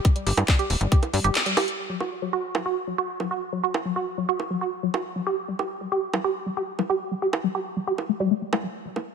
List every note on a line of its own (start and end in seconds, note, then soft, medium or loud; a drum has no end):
0.05 kick loud
0.05 closed hi-hat medium
0.16 0.20 G3 medium
0.16 closed hi-hat medium
0.27 0.33 G1 medium
0.27 0.33 G4 loud
0.27 open hi-hat loud
0.37 0.44 G2 medium
0.37 closed hi-hat medium
0.37 high bongo medium
0.48 0.52 G3 medium
0.48 kick loud
0.48 clap loud
0.48 closed hi-hat medium
0.59 0.65 G4 loud
0.59 closed hi-hat medium
0.70 0.76 D1 medium
0.70 open hi-hat loud
0.81 0.87 G1 medium
0.81 0.85 G3 medium
0.81 closed hi-hat medium
0.92 0.98 G4 loud
0.92 kick loud
0.92 closed hi-hat medium
1.03 closed hi-hat medium
1.03 high bongo soft
1.14 1.20 G2 medium
1.14 1.18 G3 medium
1.14 open hi-hat loud
1.24 1.31 G1 medium
1.24 1.31 G4 loud
1.24 closed hi-hat medium
1.35 clap loud
1.35 closed hi-hat medium
1.46 1.50 G3 medium
1.46 closed hi-hat medium
1.57 1.63 G4 loud
1.57 open hi-hat loud
1.57 high bongo medium
1.68 closed hi-hat medium
1.90 1.94 F#3 medium
2.00 2.07 F#4 medium
2.00 high bongo soft
2.22 2.26 F#3 medium
2.33 2.39 F#4 loud
2.55 2.59 F#3 medium
2.55 high bongo medium
2.66 2.72 F#4 loud
2.87 2.92 F#3 medium
2.98 3.04 F#4 loud
3.20 3.24 F#3 medium
3.20 high bongo soft
3.31 3.37 F#4 loud
3.53 3.57 F#3 medium
3.64 3.70 F#4 loud
3.74 high bongo medium
3.85 3.89 F#3 medium
3.96 4.02 F#4 loud
4.18 4.22 F#3 medium
4.29 4.35 F#4 loud
4.40 high bongo soft
4.50 4.55 F#3 medium
4.61 4.68 F#4 loud
4.83 4.87 F#3 medium
4.94 5.00 F#4 loud
4.94 high bongo medium
5.16 5.20 F#3 medium
5.27 5.33 G4 loud
5.48 5.52 G3 medium
5.59 5.65 G4 loud
5.59 high bongo soft
5.81 5.85 G3 medium
5.92 5.98 G4 loud
6.14 6.18 G3 medium
6.14 high bongo medium
6.24 6.31 G4 loud
6.46 6.50 G3 medium
6.57 6.63 G4 loud
6.79 6.83 G3 medium
6.79 high bongo soft
6.90 6.96 G4 loud
7.11 7.15 G3 medium
7.22 7.28 G4 loud
7.33 high bongo medium
7.44 7.48 G3 medium
7.55 7.61 G4 loud
7.77 7.81 G3 medium
7.87 7.94 G4 loud
7.98 high bongo soft
8.09 8.13 A3 medium
8.20 8.23 G3 loud
8.31 8.35 A3 medium
8.42 8.48 A3 medium
8.53 8.59 A3 medium
8.53 high bongo medium
8.64 8.66 G3 medium
8.85 8.89 F#3 medium
8.96 9.00 A#3 medium
8.96 high bongo soft